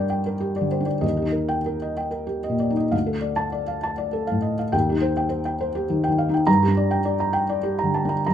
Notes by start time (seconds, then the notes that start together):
Already playing: G2 D4 G4 A#4 D5 G5
0.10 G5
0.26 A#4
0.41 G4
0.56 D5
0.61 D3
0.71 C5
0.80 D4
0.86 D5
1.01 D#2 D#5
1.17 G4
1.22 D#4
1.32 A#4
1.49 G5
1.66 A#4
1.82 D#5
1.97 G5
2.11 A#4
2.27 G4
2.44 D#5
2.50 A#2
2.60 D5
2.70 D#4
2.77 D#5
2.91 D2 F5
3.06 A4
3.21 D5
3.36 A5
3.52 D5
3.68 F5
3.83 A5
3.98 D5
4.13 A4
4.27 F5
4.31 A2
4.42 D#5
4.59 F5
4.72 D#2 G5
4.89 D#4 G4
5.01 C5
5.17 G5
5.29 C5
5.45 G5
5.61 C5
5.75 G4
5.90 D#3
6.04 G5
6.08 D#3
6.18 F5
6.29 D#4
6.34 G5
6.47 G2 A#5
6.63 G4
6.68 D4
6.77 D5
6.91 G5
7.05 D5
7.20 A#5
7.33 G5
7.49 D5
7.63 G4
7.79 A#5
7.83 D3
7.94 A5
8.05 D4
8.09 A#5
8.26 G2 A#5